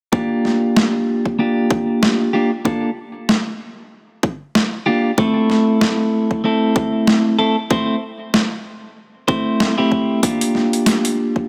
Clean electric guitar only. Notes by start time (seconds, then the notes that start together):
0.12 A#3 D4 F4 G4
1.39 A#3 D4 F4 G4
2.33 A#3 D4 F4 G4
2.65 A#3 D4 F4 A4
4.86 A#3 D4 F4 G4
5.18 A3 C4 E4 A4
6.44 A3 C4 E4 A4
7.39 A3 C4 E4 A4
7.71 A3 C4 E4 C5
9.28 A3 C4 E4 C5
9.78 A3 C4 E4 G4
10.23 A#3 D4 F4 G4